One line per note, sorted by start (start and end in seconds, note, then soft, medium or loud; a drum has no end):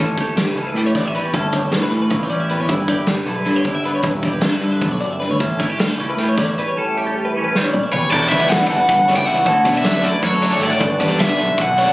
0.00 0.16 A1 medium
0.00 1.15 A2 medium
0.00 0.57 C#4 medium
0.00 0.18 A4 medium
0.18 0.77 G4 medium
0.18 0.27 C#5 medium
0.18 kick medium
0.18 closed hi-hat medium
0.27 0.37 A4 medium
0.36 0.46 A1 medium
0.36 0.47 G4 medium
0.36 snare medium
0.36 closed hi-hat medium
0.47 0.56 B4 medium
0.55 0.73 C#2 medium
0.55 1.93 E3 medium
0.55 0.96 C#4 soft
0.55 0.67 A4 medium
0.55 closed hi-hat soft
0.67 0.86 B4 medium
0.74 0.92 A2 medium
0.74 1.38 G4 medium
0.74 closed hi-hat medium
0.86 0.96 C#5 medium
0.95 1.13 A1 medium
0.95 1.07 B3 medium
0.95 1.05 D5 medium
0.95 kick medium
0.95 snare soft
0.95 closed hi-hat soft
1.06 1.35 C#4 soft
1.06 1.15 E5 medium
1.15 1.33 E2 medium
1.15 2.51 G3 medium
1.15 1.25 B4 medium
1.15 closed hi-hat medium
1.25 1.34 C#5 medium
1.34 1.73 G1 loud
1.34 2.51 A2 medium
1.34 1.93 C#4 medium
1.34 1.54 A4 medium
1.34 kick medium
1.34 closed hi-hat medium
1.52 2.12 G4 medium
1.52 1.64 C#5 medium
1.52 kick medium
1.52 closed hi-hat medium
1.64 1.74 A4 medium
1.72 1.81 A2 medium
1.72 1.83 G4 medium
1.72 snare medium
1.72 closed hi-hat medium
1.83 1.93 B4 medium
1.90 2.12 A2 medium
1.90 3.27 E3 medium
1.90 2.01 A4 medium
1.90 closed hi-hat medium
1.95 2.31 C#4 soft
2.02 2.22 B4 medium
2.10 2.28 C#2 medium
2.10 2.23 E4 medium
2.10 kick medium
2.10 closed hi-hat medium
2.22 2.71 G4 soft
2.22 2.30 C#5 medium
2.29 2.56 A1 medium
2.29 2.68 C#4 medium
2.29 2.40 D5 medium
2.29 closed hi-hat medium
2.40 2.50 E5 medium
2.49 2.68 E2 medium
2.49 3.85 G3 medium
2.49 2.60 B4 medium
2.49 closed hi-hat medium
2.60 2.69 E2 medium
2.60 2.70 C#5 medium
2.68 2.87 G1 medium
2.68 4.01 G2 medium
2.68 3.28 E4 medium
2.68 2.89 B4 medium
2.68 kick medium
2.68 closed hi-hat medium
2.88 3.45 G4 medium
2.88 2.98 D5 medium
2.88 kick medium
2.88 closed hi-hat medium
2.98 3.08 B4 medium
3.06 3.17 G1 medium
3.06 3.16 G4 medium
3.06 snare medium
3.06 closed hi-hat medium
3.16 3.26 B4 medium
3.26 3.44 B1 medium
3.26 3.84 D3 medium
3.26 3.46 E4 medium
3.26 3.35 A4 medium
3.26 closed hi-hat medium
3.36 3.56 B4 medium
3.45 3.64 G2 medium
3.45 3.56 E4 medium
3.45 closed hi-hat medium
3.56 4.05 G4 soft
3.56 3.64 C#5 medium
3.64 3.83 G1 medium
3.64 4.03 E4 medium
3.64 3.74 D5 medium
3.64 kick medium
3.64 closed hi-hat soft
3.75 3.85 E5 medium
3.84 4.03 D3 medium
3.84 4.03 B3 medium
3.84 3.95 B4 medium
3.84 closed hi-hat medium
3.95 4.06 C#5 medium
4.03 4.44 E1 loud
4.03 4.81 G2 medium
4.03 4.63 E4 medium
4.03 4.25 B4 medium
4.03 kick loud
4.03 closed hi-hat medium
4.22 5.43 G4 medium
4.22 4.33 D5 medium
4.22 kick medium
4.22 closed hi-hat medium
4.33 4.43 B4 medium
4.41 4.52 G2 medium
4.41 4.52 G4 medium
4.41 snare loud
4.41 closed hi-hat medium
4.52 4.62 B4 medium
4.61 4.83 G2 medium
4.61 5.41 D3 medium
4.61 5.41 E4 medium
4.61 4.72 A4 medium
4.61 closed hi-hat medium
4.72 4.91 B4 medium
4.81 4.99 B1 medium
4.81 5.02 E2 medium
4.81 kick loud
4.81 closed hi-hat medium
4.91 5.00 C#5 medium
5.00 5.27 G1 medium
5.00 5.21 F#2 medium
5.00 5.11 D5 medium
5.00 closed hi-hat medium
5.11 5.19 E5 medium
5.20 5.41 G2 medium
5.20 5.30 B4 medium
5.20 closed hi-hat medium
5.30 5.39 D2 medium
5.30 5.40 C#5 medium
5.40 5.58 A1 medium
5.40 6.56 A2 medium
5.40 6.00 C#4 medium
5.40 5.60 A4 medium
5.40 kick medium
5.40 closed hi-hat medium
5.59 5.70 E4 medium
5.59 5.69 C#5 medium
5.59 kick medium
5.59 closed hi-hat medium
5.69 6.18 G4 soft
5.69 5.79 A4 medium
5.78 5.87 A1 medium
5.78 5.89 G4 medium
5.78 snare medium
5.78 closed hi-hat medium
5.89 5.99 B4 medium
5.98 6.16 C#2 medium
5.98 7.36 E3 medium
5.98 6.38 C#4 medium
5.98 6.09 A4 medium
5.98 closed hi-hat medium
6.10 6.28 B4 medium
6.17 6.35 A2 medium
6.17 6.79 G4 medium
6.17 closed hi-hat medium
6.29 6.38 C#5 medium
6.37 6.54 A1 medium
6.37 6.75 C#4 medium
6.37 6.49 D5 medium
6.37 kick medium
6.37 snare soft
6.37 closed hi-hat medium
6.49 6.58 E5 medium
6.58 6.74 E2 medium
6.58 7.93 G3 medium
6.58 6.68 B4 medium
6.58 closed hi-hat medium
6.68 6.77 C#5 medium
6.76 7.92 A2 medium
6.76 7.35 C#4 medium
6.76 6.98 A4 medium
6.97 7.54 G4 medium
6.97 7.06 C#5 medium
7.07 7.16 A4 medium
7.16 7.25 G4 medium
7.25 7.35 B4 medium
7.35 8.10 E3 medium
7.35 7.74 C#4 medium
7.35 7.44 A4 medium
7.44 7.63 B4 medium
7.55 8.11 G4 medium
7.55 snare medium
7.64 7.73 C#5 medium
7.73 8.11 C#4 medium
7.73 7.84 D5 medium
7.73 mid tom medium
7.84 7.91 E5 medium
7.92 8.10 E2 medium
7.92 8.13 G3 medium
7.92 8.03 B4 medium
7.92 8.10 C#5 medium
7.92 floor tom medium
8.03 8.12 C#5 medium
8.11 8.29 E1 loud
8.11 8.89 E2 medium
8.11 8.71 E3 medium
8.11 9.48 G3 medium
8.11 8.33 A4 medium
8.11 8.29 D5 loud
8.11 kick loud
8.11 crash loud
8.15 8.33 D4 medium
8.15 8.51 F#4 medium
8.29 8.48 C#2 medium
8.29 8.49 E3 medium
8.29 8.49 G3 medium
8.29 8.50 B3 medium
8.29 8.50 E4 medium
8.29 8.41 B4 medium
8.29 8.49 E5 medium
8.29 kick medium
8.29 closed hi-hat medium
8.33 8.71 D4 medium
8.41 8.50 D5 medium
8.49 8.67 A1 medium
8.49 8.75 E3 medium
8.49 8.75 G3 medium
8.49 8.75 B3 medium
8.49 8.76 E4 medium
8.49 9.49 F#4 medium
8.49 8.60 B4 medium
8.49 8.66 F#5 medium
8.49 snare loud
8.49 closed hi-hat loud
8.61 8.70 D5 medium
8.67 8.78 G1 loud
8.67 9.45 E3 medium
8.67 8.78 A4 medium
8.67 9.13 F#5 loud
8.67 closed hi-hat medium
8.72 9.49 D4 medium
8.79 8.99 B4 medium
8.89 9.14 G1 loud
8.89 9.09 G2 medium
8.89 kick loud
8.89 closed hi-hat loud
8.99 9.08 A4 medium
9.08 9.27 F#2 medium
9.08 9.27 E3 medium
9.08 9.27 G3 medium
9.08 9.28 B3 medium
9.08 9.28 E4 medium
9.08 9.18 C#5 medium
9.08 snare soft
9.08 closed hi-hat medium
9.16 9.43 C#2 medium
9.16 9.27 D5 medium
9.16 9.26 G5 loud
9.26 9.47 E2 medium
9.26 9.47 E3 medium
9.26 9.47 G3 medium
9.26 9.47 B3 medium
9.26 9.47 E4 medium
9.26 9.37 E5 medium
9.26 9.76 F#5 loud
9.26 closed hi-hat medium
9.37 9.46 C#5 medium
9.45 9.63 D2 loud
9.45 10.80 D2 medium
9.45 10.03 D3 medium
9.45 10.43 A3 medium
9.45 9.66 E4 medium
9.45 9.65 A4 medium
9.45 kick loud
9.45 closed hi-hat medium
9.50 9.86 F#4 medium
9.65 9.82 B2 medium
9.65 9.83 D3 medium
9.65 9.84 F#3 medium
9.65 9.84 A3 medium
9.65 9.84 D4 medium
9.65 10.04 E4 medium
9.65 9.75 B4 medium
9.65 kick medium
9.65 closed hi-hat medium
9.76 9.84 D5 medium
9.76 10.06 E5 loud
9.84 10.02 F#2 medium
9.84 10.09 D3 medium
9.84 10.10 F#3 medium
9.84 10.10 A3 medium
9.84 10.10 D4 medium
9.84 10.24 F#4 medium
9.84 9.95 B4 medium
9.84 snare loud
9.84 closed hi-hat medium
9.95 10.03 D5 medium
10.03 10.13 F#2 loud
10.03 10.81 D3 medium
10.03 10.61 E4 medium
10.03 10.13 A4 medium
10.03 10.24 D5 medium
10.03 closed hi-hat medium
10.13 10.33 B4 medium
10.23 10.49 F#2 loud
10.23 10.62 F#4 medium
10.23 10.60 C#5 medium
10.23 kick loud
10.23 closed hi-hat loud
10.34 10.43 A4 medium
10.42 10.61 D3 medium
10.42 10.61 F#3 medium
10.42 10.61 A3 medium
10.42 10.82 A3 medium
10.42 10.62 D4 loud
10.42 10.52 C#5 medium
10.42 closed hi-hat medium
10.52 10.78 G#1 loud
10.52 10.62 D5 medium
10.62 10.81 A2 medium
10.62 10.81 D3 medium
10.62 10.82 F#3 medium
10.62 10.82 A3 medium
10.62 10.82 D4 medium
10.62 10.71 E4 medium
10.62 11.23 D5 medium
10.62 10.72 E5 medium
10.62 snare soft
10.62 closed hi-hat medium
10.71 10.81 F#4 medium
10.71 10.81 C#5 medium
10.80 10.98 G1 loud
10.80 11.58 G2 medium
10.80 11.37 D3 medium
10.80 11.00 B3 medium
10.80 10.99 D4 medium
10.80 11.18 F#4 medium
10.80 11.00 A4 medium
10.80 kick loud
10.80 closed hi-hat medium
11.00 11.17 E2 medium
11.00 11.19 D3 medium
11.00 11.20 G3 medium
11.00 11.09 B3 medium
11.00 11.20 B3 medium
11.00 11.20 D4 loud
11.00 11.10 B4 medium
11.00 kick medium
11.00 closed hi-hat medium
11.09 11.38 D4 medium
11.09 11.20 D5 medium
11.19 11.37 C#2 medium
11.19 11.45 D3 medium
11.19 11.46 G3 medium
11.19 11.46 B3 medium
11.19 11.46 D4 medium
11.19 11.29 E4 medium
11.19 11.29 B4 medium
11.19 11.60 E5 medium
11.19 snare loud
11.19 closed hi-hat medium
11.29 11.93 F#4 medium
11.29 11.39 D5 medium
11.38 11.48 B1 loud
11.38 11.93 D3 medium
11.38 11.93 D4 medium
11.38 11.49 A4 medium
11.38 closed hi-hat medium
11.49 11.68 B4 medium
11.58 11.84 B1 loud
11.58 11.77 E2 medium
11.58 kick loud
11.58 closed hi-hat loud
11.62 11.93 F#5 loud
11.68 11.78 A4 medium
11.78 11.93 F#2 medium
11.78 11.93 D3 medium
11.78 11.93 G3 medium
11.78 11.93 B3 medium
11.78 11.93 D4 loud
11.78 11.88 C#5 medium
11.78 snare soft
11.78 closed hi-hat medium
11.88 11.93 G#1 medium
11.88 11.93 D5 medium